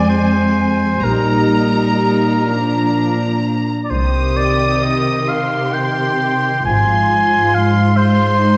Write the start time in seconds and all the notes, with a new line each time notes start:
Already playing: F2 G#3 C4 G#5
0.10 C5
1.03 A#1 A#2 G3 D#4 A#4 A#5
2.48 F3 D4 A#5
3.85 D5
3.90 C2 C3 D#3 G4 C5 D#6
4.37 D5
4.84 D#5
5.28 G4 F5 C6
5.74 G5
6.66 G#1 G#2 F3 F4 G#5 C6
7.55 F5
7.97 G#3 F4 C5 C6
8.40 D#4